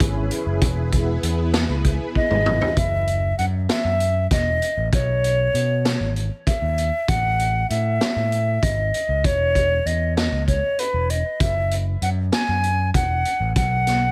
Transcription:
Already playing: analog synth pad C#4 E4 G#4 B4
0.00 picked electric bass G#1, kick, closed hi-hat
0.31 closed hi-hat
0.47 picked electric bass F#1
0.61 picked electric bass E1, analog synth pad B3 E4 G#4 B4, kick, closed hi-hat
0.92 kick, closed hi-hat
1.23 picked electric bass E2, closed hi-hat
1.54 snare, closed hi-hat
1.69 picked electric bass C#2
1.84 kick, closed hi-hat
2.15 flute D#5, kick
2.30 picked electric bass G#1, mid tom
2.46 mid tom
2.61 floor tom
2.77 picked electric bass F#1, flute E5, kick, closed hi-hat
3.07 closed hi-hat
3.38 picked electric bass F#2, flute F#5, closed hi-hat
3.69 flute E5, snare, closed hi-hat
3.85 picked electric bass F#2
4.00 closed hi-hat
4.31 picked electric bass E1, flute D#5, kick, snare, closed hi-hat
4.62 closed hi-hat
4.77 picked electric bass A1
4.93 picked electric bass B1, flute C#5, kick, closed hi-hat
5.24 closed hi-hat
5.54 picked electric bass B2, closed hi-hat
5.85 snare, closed hi-hat
6.01 picked electric bass G#1
6.16 closed hi-hat
6.47 flute E5, kick, closed hi-hat
6.62 picked electric bass D#2
6.78 closed hi-hat
7.08 picked electric bass A1, flute F#5, kick, closed hi-hat
7.39 closed hi-hat
7.70 picked electric bass A2, flute E5, closed hi-hat
8.01 snare, closed hi-hat
8.16 picked electric bass A2
8.32 closed hi-hat
8.63 picked electric bass G#1, flute D#5, kick, closed hi-hat
8.94 closed hi-hat
9.09 picked electric bass C#2
9.24 picked electric bass E1, flute C#5, kick, closed hi-hat
9.55 kick, closed hi-hat
9.86 picked electric bass E2, flute D#5, closed hi-hat
10.17 flute D#5, snare, closed hi-hat
10.32 picked electric bass C#2
10.48 flute C#5, kick, closed hi-hat
10.79 flute B4, closed hi-hat
10.94 picked electric bass E1
11.10 flute D#5, closed hi-hat
11.40 picked electric bass F#1, flute E5, kick, closed hi-hat
11.71 closed hi-hat
12.02 picked electric bass F#2, flute F#5, closed hi-hat
12.32 flute G#5, snare, closed hi-hat
12.49 picked electric bass F#2
12.63 closed hi-hat
12.94 picked electric bass E1, flute F#5, kick, closed hi-hat
13.25 closed hi-hat
13.40 picked electric bass A1
13.56 picked electric bass B1, flute F#5, kick, closed hi-hat
13.87 snare, closed hi-hat

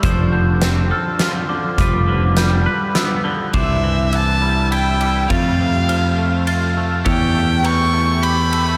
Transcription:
0.03 picked electric bass F1, clean electric guitar F3, pedal steel guitar F3 D4 C5, kick, closed hi-hat
0.32 clean electric guitar D3, glockenspiel G6
0.62 clean electric guitar C4, snare, closed hi-hat
0.91 clean electric guitar A4, glockenspiel F6
1.19 clean electric guitar F4, snare, closed hi-hat
1.49 clean electric guitar D3, glockenspiel D6
1.78 picked electric bass F1, clean electric guitar F3, pedal steel guitar G3 F4 B4, glockenspiel D6, kick, closed hi-hat
2.08 clean electric guitar D3
2.37 clean electric guitar G3, glockenspiel G6, snare, closed hi-hat
2.66 clean electric guitar B4
2.95 clean electric guitar B3, glockenspiel E6, snare, closed hi-hat
3.24 clean electric guitar D3
3.54 picked electric bass C2, clean electric guitar C3, pedal steel guitar E3 D4 C5, glockenspiel D6, kick, ride
3.58 violin E5
3.83 clean electric guitar E3
4.13 clean electric guitar E3, violin A5, glockenspiel E6, ride
4.42 clean electric guitar G3
4.72 clean electric guitar E4, violin G5, glockenspiel E6, ride
5.01 clean electric guitar G3, ride
5.29 picked electric bass F2, clean electric guitar F2, pedal steel guitar A3 F4, violin F5, glockenspiel A6, kick, ride
5.60 clean electric guitar C3
5.88 clean electric guitar F3, glockenspiel F6, ride
6.18 clean electric guitar A3
6.47 clean electric guitar F4, glockenspiel A6, ride
6.77 clean electric guitar A3
7.05 picked electric bass E2, clean electric guitar E3, pedal steel guitar G4 C#5, violin G5, glockenspiel E6, kick, ride
7.35 clean electric guitar A3
7.64 clean electric guitar E3, violin C#6, glockenspiel G6, ride
7.93 clean electric guitar A3
8.23 clean electric guitar G4, violin B5, glockenspiel G6, ride
8.52 clean electric guitar A3, ride

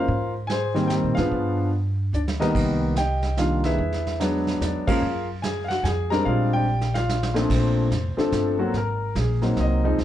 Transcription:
Already playing: grand piano F4 A#4 C5 F5
0.08 upright bass G#2, brush sweep, kick
0.47 grand piano C5 G#5, snare, hi-hat pedal
0.52 grand piano G#4
0.74 grand piano D#3 G3 A#3 C4, snare
0.88 grand piano G4 G5, snare, hi-hat pedal
1.04 upright bass A#2
1.15 upright bass G#2, grand piano F3 B3 D4 F4 G#4 B4 F5, snare
1.31 upright bass G2, brush sweep, kick
2.13 upright bass D2, grand piano D4 D5, hi-hat pedal
2.28 snare
2.40 grand piano D#3 G3 A#3 B3 D#4 G4 A#4 D#5, snare
2.55 upright bass C2, brush sweep, kick, crash
2.96 grand piano G4 D#5 G5, snare, hi-hat pedal
3.23 snare
3.37 grand piano D#3 G3 A#3 D4 F4 F5, snare, hi-hat pedal
3.64 grand piano E4 G#4 B4 E5, snare
3.78 upright bass E2, brush sweep, kick
3.93 snare
4.07 snare
4.20 grand piano F#3 G#3 B3 D4, snare, hi-hat pedal
4.47 snare
4.60 upright bass E2, grand piano D4 D5, snare, hi-hat pedal
4.87 grand piano F3 G#3 A#3 C#4 F4 G#4 A#4 F5, kick, crash
5.02 upright bass F#2, brush sweep
5.42 grand piano G#4 G#5, snare, hi-hat pedal
5.64 grand piano F5
5.68 grand piano F#4 F#5, snare
5.83 upright bass F2, grand piano G#5, snare, hi-hat pedal
5.88 grand piano G#4
6.10 grand piano G3 G#3 C4 D4 A#4 A#5, snare
6.25 upright bass A#1, grand piano F4 G#4 D5 F5, brush sweep, kick
6.53 grand piano G4 D5 G5
6.81 snare
6.94 grand piano F4 D5 F5, snare
7.09 snare, hi-hat pedal
7.23 snare
7.34 grand piano A#2 F3 A3 C4 D4, snare
7.50 upright bass A#1, brush sweep, kick, snare, crash
7.55 grand piano C5
7.91 upright bass F1, kick, snare, hi-hat pedal
8.17 grand piano F3 A3 C4 D4 A4, muted upright bass stroke, snare
8.32 upright bass G1, kick, snare, hi-hat pedal
8.58 grand piano F#3 A#3 C4 F#4
8.74 upright bass G#1, brush sweep, kick, snare
8.78 grand piano A#4
9.15 upright bass A#1, grand piano G#4, kick, snare, hi-hat pedal
9.42 grand piano F#3 A#3 C4 D#4, snare
9.56 upright bass C2, kick, snare
9.61 grand piano D#5
9.84 grand piano F3 G#3 C4 D#4
9.98 upright bass C#2, brush sweep, kick, snare

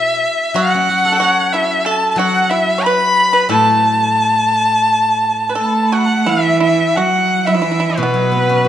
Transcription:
Already playing: guzheng B2, pipa E4, erhu E5
0.54 guzheng F#3, pipa F#4, erhu F#5
0.74 guzheng C#4
0.89 guzheng F#4
1.05 guzheng A4
1.12 pipa A4
1.20 pipa F#4, guzheng C#5
1.52 pipa E4, erhu E5
1.85 pipa A4, erhu A5
2.11 erhu A5
2.16 guzheng F#3, pipa F#4, erhu F#5
2.50 pipa E4, erhu E5
2.78 pipa C#5
2.83 pipa B4, erhu B5
3.33 pipa B4
3.49 guzheng A2, pipa A4, erhu A5
5.49 pipa B4
5.55 cello A3, pipa A4, dizi A5
5.60 erhu A5
5.65 dizi B5
5.74 dizi A5
5.83 dizi B5
5.91 pipa F#4, erhu F#5, dizi A5
5.98 dizi B5
6.06 dizi A5
6.26 cello E3, pipa E4, dizi E5, erhu E5
6.60 pipa E4, dizi E5, erhu E5
6.95 cello F#3, pipa F#4, erhu F#5, dizi F#5 A5
7.45 cello E3, pipa E4, dizi E5, erhu E5
7.54 pipa E4
7.62 pipa E4
7.71 pipa E4
7.80 pipa E4
7.90 pipa E4
7.97 guzheng B2, cello B2, erhu B4, dizi B4
8.03 pipa B3
8.14 guzheng F#3
8.32 guzheng B3
8.49 guzheng C#4
8.64 guzheng F#4, dizi B4

